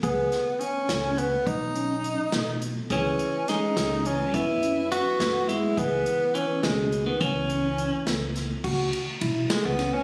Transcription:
<<
  \new Staff \with { instrumentName = "Tenor saxophone" } { \time 5/8 \key cis \minor \tempo 4 = 105 b4 cis'4 b8 | dis'2 r8 | cis'4 dis'4 cis'8 | e'4 fis'4 e'8 |
b4 cis'8 gis8. b16 | cis'4. r4 | r4. gis16 b8 cis'16 | }
  \new Staff \with { instrumentName = "Tine electric piano" } { \time 5/8 \key cis \minor gis'4 cis'8 cis'4 | b8 cis'4 b4 | gis'4 cis'8 cis'4 | b8 cis'4 b4 |
gis'4 cis'8 cis'4 | b8 cis'4 b4 | fis'4 e'4 cis'8 | }
  \new Staff \with { instrumentName = "Clean electric guitar" } { \clef bass \time 5/8 \key cis \minor r2 r8 | r2 r8 | e4 gis4 e8 | b4 b4 gis8 |
e4 e8 b,8. dis16 | e4. r4 | r2 r8 | }
  \new Staff \with { instrumentName = "Upright bass" } { \clef bass \time 5/8 \key cis \minor cis,8 r4 cis,4 | b,,4. b,,4 | cis,8 r4 cis,4 | fis,4. fis,4 |
cis,8 r4 cis,4 | cis,4. cis,4 | cis,8 r8 b,,8 r16 cis,8 r16 | }
  \new DrumStaff \with { instrumentName = "Drums" } \drummode { \time 5/8 <hh bd>8 <hh sn>8 hh8 <hh sn>8 hh8 | <hh bd>8 hh8 hh8 <hh sn>8 hh8 | <hh bd>8 hh8 <hh sn>8 <hh sn>8 hh8 | <hh bd>8 hh8 hh8 <hh sn>8 hh8 |
<hh bd>8 hh8 hh8 <hh sn>8 hh8 | <hh bd>8 hh8 hh8 <hh sn>8 <hh sn>8 | <cymc bd>8 cymr8 cymr8 <cymr sn>8 <cymr sn>8 | }
>>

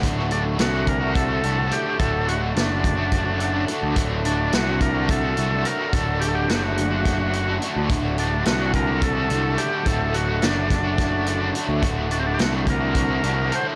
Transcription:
<<
  \new Staff \with { instrumentName = "Transistor combo organ" } { \time 7/8 \key d \major \tempo 4 = 107 r8 d'8 fis'8 bes'8 a'4 g'8 | a'8 fis'8 d'2 r8 | r8 d'8 fis'8 bes'8 a'4 bes'8 | a'8 g'32 a'32 g'16 fis'32 g'32 fis'4.~ fis'16 r8 |
r8 d'8 fis'8 bes'8 a'4 g'8 | a'8 fis'8 d'2 r8 | r8 d'32 c'32 d'32 g'32 fis'8 bes'4. c''8 | }
  \new Staff \with { instrumentName = "String machine" } { \time 7/8 \key d \major <d' fis' a''>2.~ <d' fis' a''>8~ | <d' fis' a''>2.~ <d' fis' a''>8~ | <d' fis' a''>2.~ <d' fis' a''>8~ | <d' fis' a''>2.~ <d' fis' a''>8~ |
<d' fis' a''>2.~ <d' fis' a''>8~ | <d' fis' a''>2.~ <d' fis' a''>8~ | <d' fis' a''>2.~ <d' fis' a''>8 | }
  \new Staff \with { instrumentName = "Overdriven electric guitar" } { \time 7/8 \key d \major <d, a, d a fis'>8 <a, d a fis'>8 <d, a, d a fis'>16 <d a fis'>8 <d a fis'>8 <d a fis'>16 <a, d a fis'>16 <d a fis'>16 <d, a, d a fis'>16 <d a fis'>16 | <d, a, d a fis'>8 <a, d a fis'>8 <d, a, d a fis'>16 <d a fis'>8 <d a fis'>8 <d a fis'>16 <a, d a fis'>16 <d a fis'>16 <d, a, d a fis'>16 <d a fis'>16 | <d, a, d a fis'>8 <a, d a fis'>8 <d, a, d a fis'>16 <d a fis'>8 <d a fis'>8 <d a fis'>16 <a, d a fis'>16 <d a fis'>16 <d, a, d a fis'>16 <d a fis'>16 | <d, a, d a fis'>8 <a, d a fis'>8 <d, a, d a fis'>16 <d a fis'>8 <d a fis'>8 <d a fis'>16 <a, d a fis'>16 <d a fis'>16 <d, a, d a fis'>16 <d a fis'>16 |
<d, a, d a fis'>8 <a, d a fis'>8 <d, a, d a fis'>16 <d a fis'>8 <d a fis'>8 <d a fis'>16 <a, d a fis'>16 <d a fis'>16 <d, a, d a fis'>16 <d a fis'>16 | <d, a, d a fis'>8 <a, d a fis'>8 <d, a, d a fis'>16 <d a fis'>8 <d a fis'>8 <d a fis'>16 <a, d a fis'>16 <d a fis'>16 <d, a, d a fis'>16 <d a fis'>16 | <d, a, d a fis'>8 <a, d a fis'>8 <d, a, d a fis'>16 <d a fis'>8 <d a fis'>8 <d a fis'>16 <a, d a fis'>16 <d a fis'>16 <d, a, d a fis'>16 <d a fis'>16 | }
  \new Staff \with { instrumentName = "Picked electric bass" } { \clef bass \time 7/8 \key d \major d,,4 c,4. c,8 r8 | d,,4 fis,,2 r16 d,16 | d,,4 c,4. c,8 r8 | d,,4 fis,,2 r16 d,16 |
d,,4 c,4. c,8 r8 | d,,4 fis,,2 r16 d,16 | d,,4 c,4. c,8 r8 | }
  \new DrumStaff \with { instrumentName = "Drums" } \drummode { \time 7/8 <hh bd>8 hh8 <hh sn>8 <hh bd>8 <hh bd>8 hh8 hh8 | <hh bd>8 hh8 <hh sn>8 <hh bd>8 <hh bd>8 hh8 hh8 | <hh bd>8 hh8 <hh sn>8 <hh bd>8 <hh bd>8 hh8 hh8 | <hh bd>8 hh8 <hh sn>8 hh8 <hh bd sn>8 hh8 hh8 |
<hh bd>8 hh8 <hh sn>8 <hh bd>8 <hh bd>8 hh8 hh8 | <hh bd>8 hh8 <hh sn>8 <hh bd sn>8 <hh bd sn>8 hh8 hh8 | <hh bd>8 hh8 <hh sn>8 <hh bd>8 <hh bd>8 hh8 hh8 | }
>>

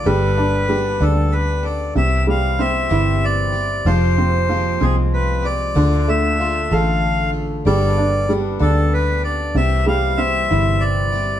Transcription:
<<
  \new Staff \with { instrumentName = "Accordion" } { \time 6/8 \key c \major \tempo 4. = 63 b'4. a'8 b'8 d''8 | e''8 f''8 e''4 d''4 | c''4. aes'8 b'8 d''8~ | d''8 e''4 f''4 r8 |
d''4 r8 a'8 b'8 d''8 | e''8 f''8 e''4 d''4 | }
  \new Staff \with { instrumentName = "Steel-string acoustic guitar" } { \time 6/8 \key c \major <g b d' a'>4 <g b d' a'>8 <g b d' a'>4 <b d' a'>8 | <c e g c' g'>4 <e g c' g'>8 <c e g c' g'>4 <g c' g'>8 | <f, c f aes c' g'>4 <f aes c' g'>8 <f, c f aes c'>4 <f aes c' g'>8 | <d a d' f'>4 <d a d' f'>8 <d a d' f'>4 <a d' f'>8 |
<g b d' a'>4 <g b d' a'>8 <g b d' a'>4 <b d' a'>8 | <c e g c' g'>4 <e g c' g'>8 <c e g c' g'>4 <g c' g'>8 | }
  \new Staff \with { instrumentName = "Upright piano" } { \time 6/8 \key c \major g8 d'8 g8 d'4. | c8 g8 c'8 e'4. | f8 c'8 f8 c'4. | d8 a8 f'8 a'4. |
g8 d'8 g8 d'4. | c8 g8 c'8 e'4. | }
  \new Staff \with { instrumentName = "Fingered electric bass" } { \clef bass \time 6/8 \key c \major g,,4. d,4. | c,4. g,,4. | f,,4. c,4. | d,4. a,,4. |
g,,4. d,4. | c,4. g,,4. | }
>>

